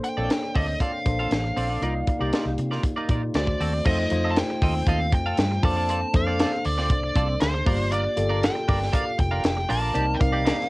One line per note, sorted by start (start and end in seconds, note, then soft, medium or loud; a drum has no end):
0.00 0.17 A#3 medium
0.00 0.18 D4 medium
0.00 0.18 A4 medium
0.00 1.06 C5 medium
0.00 0.56 G5 loud
0.00 closed hi-hat medium
0.04 muted clean electric guitar stroke soft
0.17 0.27 A#1 medium
0.17 0.87 A#3 medium
0.17 0.31 C4 soft
0.17 0.88 D4 medium
0.17 0.31 F4 medium
0.17 0.31 A4 medium
0.17 0.88 A4 medium
0.17 0.24 C#5 medium
0.17 0.31 D5 medium
0.24 0.91 D5 medium
0.30 snare loud
0.30 closed hi-hat medium
0.43 muted clean electric guitar stroke soft
0.55 0.75 D2 medium
0.55 0.73 C4 medium
0.55 0.67 F4 medium
0.55 0.67 A4 medium
0.55 0.67 D5 medium
0.55 0.79 D#5 medium
0.55 kick medium
0.55 open hi-hat medium
0.68 muted clean electric guitar stroke soft
0.80 0.98 C4 medium
0.80 0.92 F4 medium
0.80 0.92 A4 medium
0.80 0.92 D5 medium
0.80 3.31 F5 medium
0.80 kick medium
0.80 closed hi-hat medium
0.93 muted clean electric guitar stroke soft
1.05 1.25 A#1 medium
1.05 1.66 A#3 medium
1.05 1.66 D4 medium
1.05 1.66 A4 medium
1.05 1.66 C5 medium
1.05 muted clean electric guitar stroke soft
1.05 kick medium
1.05 closed hi-hat medium
1.19 1.31 C4 medium
1.19 1.31 F4 medium
1.19 1.31 A4 medium
1.19 1.32 F5 medium
1.31 1.51 A1 medium
1.31 muted clean electric guitar stroke soft
1.31 snare medium
1.31 closed hi-hat medium
1.44 muted clean electric guitar stroke soft
1.57 1.76 A#1 medium
1.57 1.69 C4 medium
1.57 1.69 F4 medium
1.57 1.69 A4 medium
1.57 1.68 D5 medium
1.57 open hi-hat medium
1.70 1.82 C4 soft
1.70 1.82 F4 soft
1.70 1.83 A4 medium
1.70 1.82 D5 medium
1.82 2.02 C2 medium
1.82 2.12 A#3 medium
1.82 2.12 D#4 medium
1.82 2.00 D#4 medium
1.82 2.12 F4 medium
1.82 1.95 F4 medium
1.82 1.95 A#4 medium
1.82 2.13 D5 medium
1.82 1.94 D5 medium
1.82 closed hi-hat medium
1.95 muted clean electric guitar stroke soft
2.07 muted clean electric guitar stroke soft
2.07 kick medium
2.07 closed hi-hat medium
2.19 2.30 C2 medium
2.19 2.90 A#3 medium
2.19 2.91 D#4 medium
2.19 2.33 D#4 medium
2.19 2.91 F4 medium
2.19 2.33 F4 medium
2.19 2.91 G4 medium
2.19 2.33 A#4 medium
2.19 2.34 D5 medium
2.33 2.51 D#4 medium
2.33 2.46 F4 medium
2.33 2.46 A#4 medium
2.33 2.45 D5 medium
2.33 snare loud
2.33 closed hi-hat medium
2.46 2.55 C2 medium
2.46 muted clean electric guitar stroke soft
2.58 2.78 C3 medium
2.58 muted clean electric guitar stroke soft
2.58 closed hi-hat medium
2.71 2.83 D#4 soft
2.71 2.83 F4 soft
2.71 2.84 A#4 medium
2.71 2.84 D5 medium
2.71 snare soft
2.84 muted clean electric guitar stroke soft
2.84 kick medium
2.84 closed hi-hat medium
2.96 3.09 D#4 medium
2.96 3.09 F4 medium
2.96 3.10 A#4 medium
2.96 3.10 D5 medium
3.08 3.29 A#2 medium
3.08 3.34 A#3 medium
3.08 3.34 D#4 medium
3.08 3.24 D#4 medium
3.08 3.35 F4 medium
3.08 3.22 F4 medium
3.08 3.23 A#4 medium
3.08 3.35 D5 medium
3.08 3.22 D5 medium
3.08 kick medium
3.08 closed hi-hat medium
3.23 muted clean electric guitar stroke soft
3.34 3.54 D2 medium
3.34 3.75 A3 medium
3.34 3.75 D4 medium
3.34 3.76 F#4 medium
3.34 3.76 C5 medium
3.34 3.85 D5 medium
3.34 snare medium
3.34 closed hi-hat medium
3.47 muted clean electric guitar stroke soft
3.47 kick medium
3.60 3.80 D#2 medium
3.60 3.78 C4 medium
3.60 3.73 F#4 medium
3.60 3.73 A4 medium
3.60 3.73 D5 medium
3.60 open hi-hat medium
3.74 muted clean electric guitar stroke soft
3.85 4.05 F2 loud
3.85 4.06 A3 medium
3.85 4.04 C4 medium
3.85 4.06 D#4 medium
3.85 4.06 F4 medium
3.85 3.99 F4 medium
3.85 3.98 A4 medium
3.85 4.06 C5 medium
3.85 4.31 D#5 medium
3.85 3.98 D#5 loud
3.85 kick loud
3.85 crash medium
3.99 muted clean electric guitar stroke soft
4.10 4.41 F2 medium
4.10 4.91 A3 medium
4.10 4.91 D#4 medium
4.10 4.91 F4 medium
4.10 4.92 C5 medium
4.10 muted clean electric guitar stroke soft
4.10 closed hi-hat medium
4.24 4.38 C4 medium
4.24 4.38 F4 medium
4.24 4.38 A4 medium
4.24 4.38 D#5 medium
4.30 4.37 A5 medium
4.36 4.88 G5 medium
4.36 snare loud
4.36 closed hi-hat medium
4.50 muted clean electric guitar stroke soft
4.62 4.82 D#2 medium
4.62 4.80 C4 medium
4.62 4.75 F4 medium
4.62 4.75 A4 medium
4.62 4.74 D#5 medium
4.62 kick medium
4.62 open hi-hat medium
4.75 muted clean electric guitar stroke soft
4.87 5.13 D#2 loud
4.87 5.05 C4 medium
4.87 5.00 F4 medium
4.87 5.00 A4 medium
4.87 5.00 D#5 medium
4.87 5.14 F5 medium
4.87 kick loud
4.87 closed hi-hat medium
5.01 muted clean electric guitar stroke soft
5.12 5.32 F2 medium
5.12 5.66 G5 loud
5.12 muted clean electric guitar stroke soft
5.12 kick loud
5.12 closed hi-hat medium
5.26 5.38 C4 medium
5.26 5.38 F4 medium
5.26 5.38 A4 medium
5.26 5.39 F5 medium
5.37 5.58 G2 medium
5.37 muted clean electric guitar stroke soft
5.37 snare loud
5.37 closed hi-hat medium
5.51 muted clean electric guitar stroke soft
5.63 6.03 F2 loud
5.63 6.04 A#3 medium
5.63 5.76 C4 medium
5.63 6.04 D4 medium
5.63 5.77 F4 medium
5.63 6.04 A4 medium
5.63 5.76 A4 medium
5.63 6.05 C5 medium
5.63 5.76 D5 medium
5.63 6.16 A5 medium
5.63 kick loud
5.63 open hi-hat medium
5.77 5.88 C4 medium
5.77 5.89 F4 medium
5.77 5.89 A4 medium
5.77 5.89 D5 medium
5.89 6.07 C4 medium
5.89 6.01 F4 medium
5.89 6.01 A4 medium
5.89 6.00 D5 loud
5.89 closed hi-hat medium
6.02 muted clean electric guitar stroke soft
6.13 6.44 F2 loud
6.13 6.94 A#3 medium
6.13 6.95 D4 medium
6.13 6.95 A4 medium
6.13 6.95 C5 medium
6.13 6.68 F5 loud
6.13 muted clean electric guitar stroke soft
6.13 kick loud
6.13 closed hi-hat medium
6.27 6.38 C4 medium
6.27 6.39 F4 medium
6.27 6.39 A4 medium
6.27 6.39 D5 medium
6.39 6.57 C4 medium
6.39 6.52 F4 medium
6.39 6.52 A4 medium
6.39 6.52 D5 medium
6.39 snare loud
6.39 closed hi-hat medium
6.53 muted clean electric guitar stroke medium
6.65 6.90 D2 medium
6.65 6.89 D5 medium
6.65 muted clean electric guitar stroke soft
6.65 open hi-hat medium
6.78 6.92 C4 medium
6.78 6.92 F4 medium
6.78 6.92 A4 medium
6.78 6.92 D5 medium
6.78 snare soft
6.90 7.10 C2 medium
6.90 7.41 D5 medium
6.90 kick medium
6.90 closed hi-hat medium
7.03 muted clean electric guitar stroke medium
7.15 7.36 C2 medium
7.15 7.34 C4 medium
7.15 7.28 F4 medium
7.15 7.28 A4 medium
7.15 7.27 D5 medium
7.15 kick loud
7.15 closed hi-hat medium
7.29 muted clean electric guitar stroke medium
7.41 7.61 D2 medium
7.41 7.92 C5 medium
7.41 snare loud
7.41 closed hi-hat medium
7.54 muted clean electric guitar stroke soft
7.66 8.06 G1 loud
7.66 8.07 A#3 medium
7.66 7.84 D4 medium
7.66 8.07 F4 medium
7.66 7.78 F4 medium
7.66 8.07 G4 medium
7.66 7.78 A#4 medium
7.66 8.08 D5 medium
7.66 7.78 D5 medium
7.66 kick loud
7.66 open hi-hat medium
7.79 muted clean electric guitar stroke soft
7.92 8.10 D4 medium
7.92 8.04 F4 medium
7.92 8.04 A#4 medium
7.92 8.45 D5 loud
7.92 8.04 D5 loud
7.92 closed hi-hat medium
8.05 muted clean electric guitar stroke soft
8.16 8.47 G1 medium
8.16 8.98 A#3 medium
8.16 8.98 F4 medium
8.16 8.98 G4 medium
8.16 8.98 A4 medium
8.16 muted clean electric guitar stroke medium
8.16 closed hi-hat medium
8.29 8.44 D4 medium
8.29 8.44 F4 medium
8.29 8.44 A#4 medium
8.29 8.44 D5 medium
8.43 8.95 G5 medium
8.43 snare loud
8.43 closed hi-hat medium
8.55 muted clean electric guitar stroke soft
8.68 8.88 G1 medium
8.68 8.86 D4 medium
8.68 8.80 F4 medium
8.68 8.80 A#4 medium
8.68 8.79 D5 medium
8.68 kick medium
8.68 open hi-hat medium
8.80 muted clean electric guitar stroke medium
8.80 snare soft
8.92 9.11 D4 medium
8.92 9.05 F4 medium
8.92 9.05 A#4 medium
8.92 9.05 D5 medium
8.92 9.20 F5 medium
8.92 kick loud
8.92 closed hi-hat medium
9.06 muted clean electric guitar stroke soft
9.18 9.39 F1 loud
9.18 9.72 G5 loud
9.18 muted clean electric guitar stroke soft
9.18 kick loud
9.18 closed hi-hat medium
9.31 9.43 D4 medium
9.31 9.43 F4 medium
9.31 9.43 A#4 medium
9.31 9.44 F5 medium
9.44 9.64 F1 medium
9.44 muted clean electric guitar stroke soft
9.44 snare loud
9.44 closed hi-hat medium
9.57 muted clean electric guitar stroke medium
9.69 9.90 A#1 medium
9.69 9.81 D4 medium
9.69 9.81 F4 medium
9.69 9.80 A#4 medium
9.69 9.80 D5 loud
9.69 10.16 A5 loud
9.69 open hi-hat medium
9.81 9.93 D4 medium
9.81 9.94 F4 medium
9.81 9.94 A#4 medium
9.81 9.94 D5 medium
9.94 10.15 C2 loud
9.94 10.12 A#3 medium
9.94 10.15 C4 medium
9.94 10.15 D#4 medium
9.94 10.06 D#4 medium
9.94 10.06 G4 medium
9.94 10.15 A#4 medium
9.94 10.05 D5 medium
9.94 10.15 D5 medium
9.94 closed hi-hat medium
10.07 muted clean electric guitar stroke soft
10.15 10.21 G5 medium
10.19 10.50 C2 medium
10.19 10.69 C4 medium
10.19 10.69 D#4 medium
10.19 10.69 A#4 medium
10.19 10.69 D5 medium
10.19 10.69 F5 loud
10.19 muted clean electric guitar stroke soft
10.19 kick medium
10.19 closed hi-hat medium
10.32 10.44 A#3 soft
10.32 10.44 D#4 medium
10.32 10.44 G4 medium
10.32 10.44 D5 medium
10.45 10.63 A#3 medium
10.45 10.58 D#4 medium
10.45 10.58 G4 medium
10.45 10.57 D5 medium
10.45 snare loud
10.45 closed hi-hat medium
10.59 muted clean electric guitar stroke soft
10.59 snare soft